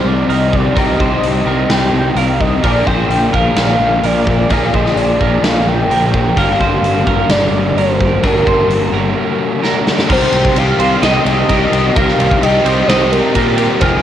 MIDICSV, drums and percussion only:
0, 0, Header, 1, 2, 480
1, 0, Start_track
1, 0, Key_signature, -3, "minor"
1, 0, Tempo, 466200
1, 787, Time_signature, 4, 2, 24, 8
1, 14436, End_track
2, 0, Start_track
2, 0, Title_t, "Drums"
2, 308, Note_on_c, 9, 46, 45
2, 411, Note_off_c, 9, 46, 0
2, 548, Note_on_c, 9, 36, 82
2, 651, Note_off_c, 9, 36, 0
2, 789, Note_on_c, 9, 36, 113
2, 793, Note_on_c, 9, 46, 51
2, 892, Note_off_c, 9, 36, 0
2, 896, Note_off_c, 9, 46, 0
2, 1031, Note_on_c, 9, 36, 84
2, 1134, Note_off_c, 9, 36, 0
2, 1268, Note_on_c, 9, 46, 54
2, 1371, Note_off_c, 9, 46, 0
2, 1749, Note_on_c, 9, 46, 57
2, 1750, Note_on_c, 9, 38, 104
2, 1852, Note_off_c, 9, 46, 0
2, 1853, Note_off_c, 9, 38, 0
2, 2228, Note_on_c, 9, 46, 49
2, 2331, Note_off_c, 9, 46, 0
2, 2476, Note_on_c, 9, 36, 77
2, 2579, Note_off_c, 9, 36, 0
2, 2712, Note_on_c, 9, 46, 49
2, 2716, Note_on_c, 9, 36, 96
2, 2815, Note_off_c, 9, 46, 0
2, 2819, Note_off_c, 9, 36, 0
2, 2955, Note_on_c, 9, 36, 76
2, 3058, Note_off_c, 9, 36, 0
2, 3196, Note_on_c, 9, 46, 47
2, 3299, Note_off_c, 9, 46, 0
2, 3438, Note_on_c, 9, 36, 76
2, 3541, Note_off_c, 9, 36, 0
2, 3671, Note_on_c, 9, 46, 54
2, 3672, Note_on_c, 9, 38, 106
2, 3774, Note_off_c, 9, 46, 0
2, 3775, Note_off_c, 9, 38, 0
2, 4152, Note_on_c, 9, 46, 49
2, 4255, Note_off_c, 9, 46, 0
2, 4396, Note_on_c, 9, 36, 81
2, 4499, Note_off_c, 9, 36, 0
2, 4633, Note_on_c, 9, 46, 53
2, 4639, Note_on_c, 9, 36, 99
2, 4736, Note_off_c, 9, 46, 0
2, 4742, Note_off_c, 9, 36, 0
2, 4880, Note_on_c, 9, 36, 69
2, 4983, Note_off_c, 9, 36, 0
2, 5003, Note_on_c, 9, 38, 28
2, 5106, Note_off_c, 9, 38, 0
2, 5119, Note_on_c, 9, 46, 49
2, 5222, Note_off_c, 9, 46, 0
2, 5361, Note_on_c, 9, 36, 71
2, 5464, Note_off_c, 9, 36, 0
2, 5600, Note_on_c, 9, 46, 57
2, 5601, Note_on_c, 9, 38, 108
2, 5703, Note_off_c, 9, 46, 0
2, 5704, Note_off_c, 9, 38, 0
2, 6085, Note_on_c, 9, 46, 55
2, 6188, Note_off_c, 9, 46, 0
2, 6320, Note_on_c, 9, 36, 89
2, 6423, Note_off_c, 9, 36, 0
2, 6557, Note_on_c, 9, 46, 54
2, 6559, Note_on_c, 9, 36, 96
2, 6660, Note_off_c, 9, 46, 0
2, 6662, Note_off_c, 9, 36, 0
2, 6801, Note_on_c, 9, 36, 75
2, 6904, Note_off_c, 9, 36, 0
2, 7042, Note_on_c, 9, 46, 49
2, 7145, Note_off_c, 9, 46, 0
2, 7278, Note_on_c, 9, 36, 82
2, 7381, Note_off_c, 9, 36, 0
2, 7512, Note_on_c, 9, 46, 47
2, 7513, Note_on_c, 9, 38, 117
2, 7615, Note_off_c, 9, 46, 0
2, 7616, Note_off_c, 9, 38, 0
2, 8006, Note_on_c, 9, 46, 47
2, 8109, Note_off_c, 9, 46, 0
2, 8241, Note_on_c, 9, 36, 81
2, 8343, Note_off_c, 9, 36, 0
2, 8478, Note_on_c, 9, 36, 105
2, 8478, Note_on_c, 9, 46, 52
2, 8581, Note_off_c, 9, 36, 0
2, 8581, Note_off_c, 9, 46, 0
2, 8718, Note_on_c, 9, 36, 85
2, 8821, Note_off_c, 9, 36, 0
2, 8961, Note_on_c, 9, 46, 45
2, 9064, Note_off_c, 9, 46, 0
2, 9923, Note_on_c, 9, 38, 53
2, 10026, Note_off_c, 9, 38, 0
2, 10163, Note_on_c, 9, 38, 81
2, 10266, Note_off_c, 9, 38, 0
2, 10282, Note_on_c, 9, 38, 84
2, 10385, Note_off_c, 9, 38, 0
2, 10396, Note_on_c, 9, 49, 116
2, 10398, Note_on_c, 9, 36, 126
2, 10499, Note_off_c, 9, 49, 0
2, 10501, Note_off_c, 9, 36, 0
2, 10525, Note_on_c, 9, 38, 38
2, 10628, Note_off_c, 9, 38, 0
2, 10631, Note_on_c, 9, 51, 73
2, 10734, Note_off_c, 9, 51, 0
2, 10757, Note_on_c, 9, 36, 88
2, 10860, Note_off_c, 9, 36, 0
2, 10874, Note_on_c, 9, 51, 102
2, 10977, Note_off_c, 9, 51, 0
2, 11116, Note_on_c, 9, 51, 78
2, 11219, Note_off_c, 9, 51, 0
2, 11357, Note_on_c, 9, 51, 97
2, 11358, Note_on_c, 9, 38, 110
2, 11460, Note_off_c, 9, 51, 0
2, 11461, Note_off_c, 9, 38, 0
2, 11598, Note_on_c, 9, 51, 81
2, 11701, Note_off_c, 9, 51, 0
2, 11834, Note_on_c, 9, 51, 95
2, 11837, Note_on_c, 9, 36, 80
2, 11937, Note_off_c, 9, 51, 0
2, 11940, Note_off_c, 9, 36, 0
2, 12078, Note_on_c, 9, 51, 75
2, 12181, Note_off_c, 9, 51, 0
2, 12318, Note_on_c, 9, 36, 122
2, 12319, Note_on_c, 9, 51, 102
2, 12421, Note_off_c, 9, 36, 0
2, 12422, Note_off_c, 9, 51, 0
2, 12441, Note_on_c, 9, 38, 35
2, 12544, Note_off_c, 9, 38, 0
2, 12559, Note_on_c, 9, 51, 71
2, 12662, Note_off_c, 9, 51, 0
2, 12678, Note_on_c, 9, 36, 86
2, 12781, Note_off_c, 9, 36, 0
2, 12797, Note_on_c, 9, 51, 107
2, 12900, Note_off_c, 9, 51, 0
2, 13033, Note_on_c, 9, 51, 84
2, 13136, Note_off_c, 9, 51, 0
2, 13277, Note_on_c, 9, 51, 112
2, 13278, Note_on_c, 9, 38, 119
2, 13380, Note_off_c, 9, 51, 0
2, 13381, Note_off_c, 9, 38, 0
2, 13515, Note_on_c, 9, 51, 78
2, 13618, Note_off_c, 9, 51, 0
2, 13745, Note_on_c, 9, 51, 107
2, 13749, Note_on_c, 9, 36, 75
2, 13848, Note_off_c, 9, 51, 0
2, 13852, Note_off_c, 9, 36, 0
2, 13978, Note_on_c, 9, 51, 82
2, 14081, Note_off_c, 9, 51, 0
2, 14217, Note_on_c, 9, 51, 110
2, 14224, Note_on_c, 9, 36, 104
2, 14319, Note_off_c, 9, 51, 0
2, 14327, Note_off_c, 9, 36, 0
2, 14436, End_track
0, 0, End_of_file